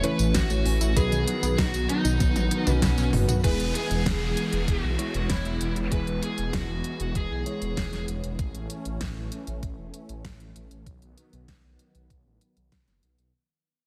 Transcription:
Already playing: E3 A3 C#4
0.04 C#3 E3 A3 C#4 E4 B4 C#5, closed hi-hat
0.19 A1, closed hi-hat, tambourine
0.34 A1 E3 F#4, kick, snare, closed hi-hat, tambourine
0.50 A1 A3, closed hi-hat, tambourine
0.65 A1 C#4, open hi-hat
0.81 A1 E4, closed hi-hat, tambourine
0.96 B1 D#3 F#3 B3 D#4 F#4 G#4 B4, kick, closed hi-hat, tambourine
1.12 B1 D#3, closed hi-hat, tambourine
1.27 F#3, closed hi-hat
1.43 B1 B3, closed hi-hat, tambourine
1.58 B1 D#4 F#4, kick, snare, closed hi-hat, tambourine
1.74 B1, closed hi-hat, tambourine
1.89 D#4 F#4, closed hi-hat
2.05 B1 D#4, closed hi-hat, tambourine
2.20 B1 B3, kick, closed hi-hat, high tom, tambourine
2.36 A1 F#3, closed hi-hat, high tom, tambourine
2.51 D#3, closed hi-hat
2.67 B1 F#3 B3 D#4 F#4 B4, closed hi-hat, mid tom, tambourine
2.71 C#4
2.82 B1 F#3, kick, snare, closed hi-hat, mid tom, tambourine
2.98 B1 B3, snare, closed hi-hat, tambourine
3.13 F#1 D#4, mid tom, open hi-hat
3.28 B1 F#4, closed hi-hat, mid tom, tambourine
3.44 E1 E3 G#3 B3 E4 G#4 B4, kick, closed hi-hat, downlifter
3.60 E1, closed hi-hat
3.75 G#4, closed hi-hat
3.91 E1, closed hi-hat
4.06 E1, kick, snare, closed hi-hat
4.22 E1
4.37 closed hi-hat
4.53 E1, closed hi-hat
4.68 E1 F#4, kick, closed hi-hat
4.84 B1
4.99 E3 G#3 B3 E4 C#5, closed hi-hat
5.14 E1, closed hi-hat
5.30 E1 E4, kick, snare, closed hi-hat
5.45 E1, closed hi-hat
5.61 E1, closed hi-hat
5.76 E1, closed hi-hat
5.92 E1 E3 G#3 B3 E4 G#4 B4, kick, closed hi-hat
6.07 E1, closed hi-hat
6.23 G#4, closed hi-hat
6.38 E1, closed hi-hat
6.53 E1 F#4, kick, snare, closed hi-hat
6.69 E1
6.84 closed hi-hat
7.00 E1, closed hi-hat
7.15 E1 G#4, kick, closed hi-hat
7.31 B1
7.46 E3 G#3 B3 E4 C#5, closed hi-hat
7.62 E1, closed hi-hat
7.77 E1, kick, snare, closed hi-hat
7.93 E1, snare, closed hi-hat
8.08 E1, closed hi-hat
8.24 E1, closed hi-hat
8.39 A1 E3 A3 C#4, kick, closed hi-hat
8.55 A1, closed hi-hat
8.70 closed hi-hat
8.85 A1, closed hi-hat
9.01 A1, kick, snare, closed hi-hat
9.16 A1
9.32 closed hi-hat
9.47 A1, closed hi-hat
9.63 A1, kick, closed hi-hat
9.78 E1
9.94 closed hi-hat
10.09 A1, closed hi-hat
10.25 A1, kick, snare, closed hi-hat
10.40 A1, closed hi-hat
10.56 A1, closed hi-hat
10.71 A1, closed hi-hat
10.86 B1 D#3 F#3 B3, kick, closed hi-hat
11.02 B1, closed hi-hat
11.18 closed hi-hat
11.33 B1, closed hi-hat
11.48 B1, kick, snare, closed hi-hat
11.64 B1
11.79 closed hi-hat
11.95 B1, closed hi-hat
12.10 B1, kick, closed hi-hat
12.26 A1
12.41 closed hi-hat
12.57 B1, closed hi-hat
12.72 B1, kick, snare, closed hi-hat
12.88 F#1, snare, closed hi-hat
13.03 B1, closed hi-hat
13.18 B1, closed hi-hat

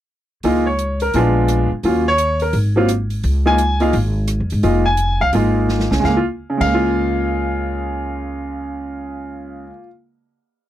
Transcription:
0.43 C#2 G#3 A#3 D#4 F4, open hi-hat
0.66 C#5
0.79 closed hi-hat
1.00 A#4, open hi-hat
1.13 A#1 G#3 B3 D4 F4, open hi-hat
1.48 cross-stick, closed hi-hat
1.71 muted upright bass stroke
1.83 D#2 F#3 A#3 C#4 F4, open hi-hat
2.08 C#5
2.18 closed hi-hat
2.40 A#4, open hi-hat
2.53 G#1, open hi-hat
2.76 F#3 A#3 C4 F4
2.89 cross-stick, closed hi-hat
3.10 open hi-hat
3.23 C#2, open hi-hat
3.46 G#3 A#3 D#4 F4 G#5
3.58 closed hi-hat
3.80 G#3 A#3 D#4 F4 F5, open hi-hat
3.93 G#1, open hi-hat
4.27 cross-stick, closed hi-hat
4.40 F2
4.50 G#2, open hi-hat
4.63 F1 G#3 A#3 D#4 F4, open hi-hat
4.85 G#5
4.97 closed hi-hat
5.20 C2 F5
5.33 G#1 G#3 A#3 D#4 F4, open hi-hat
5.69 snare
5.80 snare
5.91 C2 C#3, snare
6.00 C#2 G#3, kick
6.04 A#3 F5, snare
6.17 F4
6.50 C#3
6.58 C#2 G#3 F5, kick, crash
6.66 A#3
6.74 F4

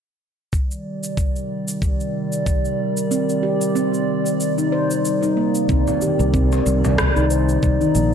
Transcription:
0.53 C3 D#3 G3 D5, kick, shaker
0.71 shaker
1.04 shaker
1.17 kick, shaker
1.36 shaker
1.68 shaker
1.82 kick, shaker
2.00 shaker
2.32 shaker
2.46 kick, shaker
2.65 shaker
2.97 shaker
3.11 C4, shaker
3.29 shaker
3.43 G4
3.62 shaker
3.75 C4, shaker
3.94 shaker
4.26 shaker
4.40 shaker
4.58 D#4, shaker
4.72 C5
4.91 shaker
5.05 shaker
5.23 D#4, shaker
5.37 A#3
5.55 shaker
5.69 C2 C3 D#3 C4 D5, kick, shaker
5.87 low conga, shaker
6.01 G4, high conga, shaker
6.19 C2, shaker
6.34 C4, kick, shaker
6.52 high bongo, shaker
6.66 C2, shaker
6.84 low conga, shaker
6.98 kick, cross-stick, shaker
7.16 C2 D#4, shaker
7.31 C5, shaker
7.49 shaker
7.63 C2, kick, shaker
7.81 D#4, high conga, shaker
7.95 A#1 A#3, shaker

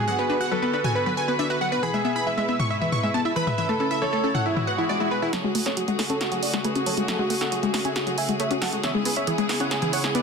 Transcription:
Already playing: D3 B3 F#4 G#4
0.08 F#3 B4 F#5
0.19 B3 B4
0.30 D4 B4
0.41 F#4 F#5
0.51 F#3 A4 B4
0.62 B3 B4
0.73 D4 B4
0.84 F#4 G#5, mid tom
0.95 B4
1.06 F#3 B4
1.17 G#5
1.28 B3 B4
1.39 D4 E5
1.50 F#4 B4
1.61 F#3 F#5
1.72 B3 B4
1.83 B2 E3 G#3 E4 G#4 B5
1.94 G#3 E5
2.05 B3 E5
2.16 E4 B5
2.27 E3 E5
2.38 G#3 E5
2.48 B3 E5
2.59 E4 C#6, mid tom
2.70 E5
2.81 E3 E5
2.92 C#6, mid tom
3.03 G#3 E5
3.14 B3 A5
3.25 E4 E5
3.36 E3 B4 B5
3.47 G#3 E5, mid tom
3.58 C#3 E3 A3 A4 E5
3.69 A3 A4
3.80 C#4 A4
3.91 E4 E5
4.02 E3 A4 C#5
4.13 A3 A4
4.24 C#4 A4
4.35 E4 F#5, mid tom
4.45 B2 G#3 E4 G#4, swell
4.56 E3 E4, mid tom
4.67 B4 F#5
4.78 E3 E4
4.89 G#3 D5
5.00 G#3 E4
5.11 G#3 B4
5.22 E4 G#4
5.33 C#3 F#3 A3 F#4 G#4 A4 C#5, snare, closed hi-hat
5.44 G#3 F#4
5.55 A3 F#4, open hi-hat
5.66 C#4 A4 C#5, snare, closed hi-hat
5.77 F#3 F#4, closed hi-hat
5.88 G#3 F#4, closed hi-hat
5.99 A3 F#4, snare, open hi-hat
6.10 C#4 A4 C#5, closed hi-hat
6.21 F#4, snare, closed hi-hat
6.32 F#3 F#4, closed hi-hat
6.43 F#4 D5, open hi-hat
6.54 G#3 F#4, snare
6.65 A3 G#4 B4, closed hi-hat
6.75 C#4 F#4, closed hi-hat
6.86 F#3 A4 C#5, open hi-hat
6.97 G#3 F#4, closed hi-hat
7.08 F#3 A4 F#5, snare, closed hi-hat
7.19 G#3 F#4
7.30 A3 F#4, open hi-hat
7.41 C#4 A4 F#5, snare, closed hi-hat
7.52 F#3 F#4, closed hi-hat
7.63 G#3 F#4, closed hi-hat
7.74 A3 F#4, snare, open hi-hat
7.85 C#4 E5 G#5, closed hi-hat
7.96 F#4, snare, closed hi-hat
8.07 F#3 F#4, closed hi-hat
8.18 E5 G#5, open hi-hat
8.29 G#3 F#4, closed hi-hat
8.40 A3 C#5 E5, closed hi-hat
8.51 C#4 F#4, closed hi-hat
8.62 F#3 A4 F#5, snare, open hi-hat
8.73 G#3 F#4, closed hi-hat
8.83 C#3 E3 B3 E4 C#5 E5, snare, closed hi-hat
8.94 G#3 G#4
9.05 B3 G#4, open hi-hat
9.16 C#4 C#5 E5, closed hi-hat
9.27 E3 G#4, closed hi-hat
9.38 G#3 G#4, closed hi-hat
9.49 B3 G#4, snare, open hi-hat
9.60 C#4 C#5 F#5, closed hi-hat
9.71 G#4, snare, closed hi-hat
9.82 E3 G#4, closed hi-hat
9.93 C#5 F#5, open hi-hat
10.04 G#3 G#4, snare
10.15 B3 B4 D5, closed hi-hat

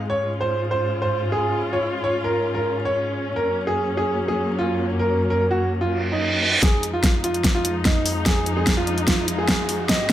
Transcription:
Already playing: G#3
0.10 G#2 C#4 F4 C#5
0.41 C5
0.71 C5
1.02 C5
1.32 G#4
1.73 C#5
2.04 C#5
2.24 A#4
2.54 A#4
2.85 C#5
3.36 F#2 F#3 A#3 A#4
3.67 G#4
3.97 G#4
4.28 G#4
4.59 F4
4.99 A#4
5.30 A#4
5.51 F#4
5.81 F4, reverse cymbal
6.12 D#4
6.63 F2 F3 G#3 D#4 G#4, kick, snare, closed hi-hat, riser
6.83 closed hi-hat
6.94 F4
7.04 kick, snare, closed hi-hat
7.24 F4, closed hi-hat
7.34 closed hi-hat
7.44 kick, snare, closed hi-hat
7.55 F4
7.65 closed hi-hat
7.85 D#4, kick, snare, closed hi-hat
8.06 open hi-hat
8.26 G#4, kick, snare, closed hi-hat
8.46 closed hi-hat
8.57 G#4
8.67 kick, snare, closed hi-hat
8.77 F4
8.87 closed hi-hat
8.98 closed hi-hat
9.07 F4, kick, snare, closed hi-hat
9.28 closed hi-hat
9.38 G#4
9.48 kick, snare, closed hi-hat
9.69 open hi-hat
9.89 G#2 C4 D#5, kick, snare, closed hi-hat

